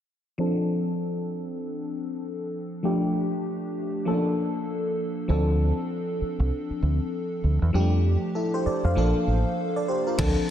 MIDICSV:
0, 0, Header, 1, 5, 480
1, 0, Start_track
1, 0, Key_signature, -1, "minor"
1, 0, Tempo, 612245
1, 307, Time_signature, 4, 2, 24, 8
1, 8234, End_track
2, 0, Start_track
2, 0, Title_t, "FM electric piano"
2, 0, Program_c, 0, 5
2, 298, Note_on_c, 0, 53, 76
2, 305, Note_on_c, 0, 60, 67
2, 310, Note_on_c, 0, 62, 64
2, 316, Note_on_c, 0, 69, 82
2, 439, Control_c, 0, 64, 127
2, 2191, Note_off_c, 0, 53, 0
2, 2194, Note_off_c, 0, 60, 0
2, 2197, Note_off_c, 0, 62, 0
2, 2200, Note_off_c, 0, 69, 0
2, 2217, Note_on_c, 0, 53, 75
2, 2223, Note_on_c, 0, 57, 72
2, 2230, Note_on_c, 0, 62, 63
2, 2235, Note_on_c, 0, 67, 81
2, 2237, Control_c, 0, 64, 0
2, 2395, Control_c, 0, 64, 127
2, 3163, Note_off_c, 0, 53, 0
2, 3165, Note_off_c, 0, 57, 0
2, 3169, Note_off_c, 0, 62, 0
2, 3172, Note_off_c, 0, 67, 0
2, 3178, Note_on_c, 0, 53, 76
2, 3184, Note_on_c, 0, 58, 68
2, 3189, Note_on_c, 0, 61, 49
2, 3195, Control_c, 0, 64, 0
2, 3196, Note_on_c, 0, 69, 83
2, 3240, Note_on_c, 0, 62, 66
2, 3249, Note_off_c, 0, 61, 0
2, 3338, Control_c, 0, 64, 127
2, 4123, Note_off_c, 0, 53, 0
2, 4126, Note_off_c, 0, 58, 0
2, 4132, Note_off_c, 0, 69, 0
2, 4139, Note_on_c, 0, 53, 69
2, 4142, Note_off_c, 0, 62, 0
2, 4145, Note_on_c, 0, 60, 68
2, 4152, Note_on_c, 0, 62, 63
2, 4156, Control_c, 0, 64, 0
2, 4157, Note_on_c, 0, 69, 82
2, 4306, Control_c, 0, 64, 127
2, 6031, Note_off_c, 0, 53, 0
2, 6035, Note_off_c, 0, 60, 0
2, 6038, Note_off_c, 0, 62, 0
2, 6041, Note_off_c, 0, 69, 0
2, 6059, Note_on_c, 0, 53, 71
2, 6066, Note_on_c, 0, 55, 55
2, 6072, Note_on_c, 0, 62, 67
2, 6075, Control_c, 0, 64, 0
2, 6078, Note_on_c, 0, 67, 82
2, 6116, Note_on_c, 0, 57, 65
2, 6127, Note_off_c, 0, 55, 0
2, 6214, Control_c, 0, 64, 127
2, 6543, Note_off_c, 0, 67, 0
2, 6547, Note_on_c, 0, 69, 65
2, 6553, Note_on_c, 0, 64, 54
2, 6684, Note_off_c, 0, 69, 0
2, 6687, Note_off_c, 0, 64, 0
2, 6695, Note_on_c, 0, 72, 72
2, 6699, Note_on_c, 0, 67, 61
2, 6784, Note_off_c, 0, 72, 0
2, 6786, Note_off_c, 0, 67, 0
2, 6790, Note_on_c, 0, 74, 65
2, 6795, Note_on_c, 0, 69, 56
2, 6926, Note_off_c, 0, 74, 0
2, 6928, Note_off_c, 0, 69, 0
2, 6936, Note_on_c, 0, 77, 64
2, 6941, Note_on_c, 0, 72, 52
2, 7004, Note_off_c, 0, 53, 0
2, 7010, Note_off_c, 0, 62, 0
2, 7020, Note_on_c, 0, 53, 75
2, 7026, Note_on_c, 0, 58, 67
2, 7033, Note_off_c, 0, 57, 0
2, 7033, Note_on_c, 0, 62, 70
2, 7035, Control_c, 0, 64, 0
2, 7039, Note_on_c, 0, 69, 80
2, 7161, Control_c, 0, 64, 127
2, 7162, Note_off_c, 0, 77, 0
2, 7164, Note_off_c, 0, 72, 0
2, 7503, Note_off_c, 0, 69, 0
2, 7654, Note_on_c, 0, 74, 63
2, 7657, Note_on_c, 0, 69, 54
2, 7743, Note_off_c, 0, 74, 0
2, 7745, Note_off_c, 0, 69, 0
2, 7749, Note_on_c, 0, 72, 68
2, 7753, Note_on_c, 0, 67, 57
2, 7885, Note_off_c, 0, 72, 0
2, 7887, Note_off_c, 0, 67, 0
2, 7892, Note_on_c, 0, 70, 60
2, 7897, Note_on_c, 0, 65, 57
2, 7964, Note_off_c, 0, 53, 0
2, 7967, Note_off_c, 0, 58, 0
2, 7970, Note_off_c, 0, 62, 0
2, 7980, Note_on_c, 0, 53, 85
2, 7985, Note_on_c, 0, 60, 72
2, 7988, Note_on_c, 0, 62, 81
2, 7991, Note_on_c, 0, 69, 90
2, 7996, Control_c, 0, 64, 0
2, 8119, Note_off_c, 0, 70, 0
2, 8122, Note_off_c, 0, 65, 0
2, 8154, Control_c, 0, 64, 127
2, 8234, Note_off_c, 0, 53, 0
2, 8234, Note_off_c, 0, 60, 0
2, 8234, Note_off_c, 0, 62, 0
2, 8234, Note_off_c, 0, 69, 0
2, 8234, End_track
3, 0, Start_track
3, 0, Title_t, "Fingered electric bass"
3, 0, Program_c, 1, 33
3, 4150, Note_on_c, 1, 38, 109
3, 4474, Note_off_c, 1, 38, 0
3, 5014, Note_on_c, 1, 36, 99
3, 5094, Note_off_c, 1, 36, 0
3, 5351, Note_on_c, 1, 38, 98
3, 5471, Note_off_c, 1, 38, 0
3, 5831, Note_on_c, 1, 38, 81
3, 5951, Note_off_c, 1, 38, 0
3, 5974, Note_on_c, 1, 40, 97
3, 6054, Note_off_c, 1, 40, 0
3, 6069, Note_on_c, 1, 41, 95
3, 6393, Note_off_c, 1, 41, 0
3, 6933, Note_on_c, 1, 41, 86
3, 7013, Note_off_c, 1, 41, 0
3, 7028, Note_on_c, 1, 34, 92
3, 7150, Note_off_c, 1, 34, 0
3, 7269, Note_on_c, 1, 33, 80
3, 7390, Note_off_c, 1, 33, 0
3, 7989, Note_on_c, 1, 38, 96
3, 8110, Note_off_c, 1, 38, 0
3, 8234, End_track
4, 0, Start_track
4, 0, Title_t, "Muted fingered electric bass strokes"
4, 4871, Note_on_c, 9, 29, 45
4, 4949, Note_off_c, 9, 29, 0
4, 5255, Note_on_c, 9, 29, 46
4, 5333, Note_off_c, 9, 29, 0
4, 6789, Note_on_c, 9, 29, 47
4, 6868, Note_off_c, 9, 29, 0
4, 8234, End_track
5, 0, Start_track
5, 0, Title_t, "Drums"
5, 7986, Note_on_c, 9, 42, 78
5, 7986, Note_on_c, 9, 49, 88
5, 7987, Note_on_c, 9, 36, 110
5, 8064, Note_off_c, 9, 42, 0
5, 8064, Note_off_c, 9, 49, 0
5, 8065, Note_off_c, 9, 36, 0
5, 8234, End_track
0, 0, End_of_file